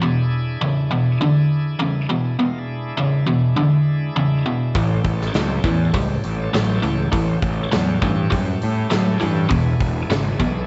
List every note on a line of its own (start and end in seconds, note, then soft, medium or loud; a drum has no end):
0.02 0.55 E2 medium
0.02 0.56 B2 medium
0.02 2.37 D4 medium
0.02 2.37 E4 medium
0.02 2.37 G#4 medium
0.61 0.88 E2 medium
0.61 0.88 C#3 medium
0.91 1.18 E2 medium
0.91 1.18 B2 medium
1.21 1.74 E2 medium
1.21 1.74 D3 medium
1.80 2.06 E2 medium
1.80 2.07 C#3 medium
2.10 2.36 E2 medium
2.10 2.36 B2 medium
2.38 2.92 E2 medium
2.38 2.93 B2 medium
2.38 2.58 A3 medium
2.38 2.59 D#4 medium
2.38 2.59 F4 medium
2.58 4.74 G#3 medium
2.58 4.73 D4 medium
2.58 4.74 E4 medium
2.97 3.24 E2 medium
2.97 3.25 C#3 medium
3.26 3.54 E2 medium
3.26 3.54 B2 medium
3.56 4.10 E2 medium
3.56 4.10 D3 medium
4.16 4.43 E2 medium
4.16 4.43 C#3 medium
4.46 4.73 E2 medium
4.46 4.73 B2 medium
4.75 4.98 A1 medium
4.75 5.29 A2 medium
4.75 5.29 E3 medium
4.75 7.10 C#4 medium
4.75 7.10 G4 medium
4.75 7.10 A4 medium
4.75 kick medium
4.75 open hi-hat medium
5.04 5.28 A1 medium
5.04 kick medium
5.04 open hi-hat soft
5.21 snare soft
5.34 5.58 C#2 medium
5.34 5.62 A2 medium
5.34 5.62 F#3 medium
5.34 snare loud
5.34 open hi-hat medium
5.64 5.87 E2 medium
5.64 5.91 A2 medium
5.64 5.91 E3 medium
5.64 kick medium
5.64 open hi-hat soft
5.93 6.17 C#2 medium
5.93 6.48 A2 medium
5.93 6.48 G3 medium
5.93 kick medium
5.93 open hi-hat medium
6.23 6.47 A1 medium
6.23 open hi-hat medium
6.54 6.77 A1 medium
6.54 6.80 A2 medium
6.54 6.81 F#3 medium
6.54 snare loud
6.54 open hi-hat medium
6.83 7.06 C#2 medium
6.83 7.09 A2 medium
6.83 7.10 E3 medium
6.83 open hi-hat soft
7.12 7.35 A1 medium
7.12 7.66 A2 medium
7.12 7.66 E3 medium
7.12 9.48 C#4 medium
7.12 9.47 G4 medium
7.12 9.47 A4 medium
7.12 kick medium
7.12 open hi-hat medium
7.42 7.65 A1 medium
7.42 kick medium
7.42 open hi-hat soft
7.72 7.96 E2 medium
7.72 7.98 A2 medium
7.72 7.99 F#3 medium
7.72 snare loud
7.72 open hi-hat medium
8.02 8.25 G2 medium
8.02 8.28 A2 medium
8.02 8.29 E3 medium
8.02 kick medium
8.02 open hi-hat soft
8.30 8.55 F#2 medium
8.30 8.84 A2 medium
8.30 8.84 G3 medium
8.30 kick medium
8.30 open hi-hat medium
8.62 8.85 A2 medium
8.62 open hi-hat medium
8.90 9.17 A2 medium
8.90 9.15 A2 medium
8.90 9.18 F#3 medium
8.90 snare loud
8.90 open hi-hat medium
9.20 9.45 G2 medium
9.20 9.47 A2 medium
9.20 9.47 E3 medium
9.20 open hi-hat soft
9.49 9.73 E1 medium
9.49 10.03 E2 medium
9.49 10.03 B2 medium
9.49 10.67 D4 medium
9.49 10.67 E4 medium
9.49 10.67 G#4 medium
9.49 kick loud
9.49 open hi-hat medium
9.80 10.03 E1 medium
9.80 kick medium
9.80 open hi-hat soft
10.10 10.33 G#1 medium
10.10 10.36 E2 medium
10.10 10.36 C#3 medium
10.10 snare loud
10.10 open hi-hat medium
10.39 10.63 B1 medium
10.39 10.66 E2 medium
10.39 10.66 B2 medium
10.39 kick medium
10.39 open hi-hat soft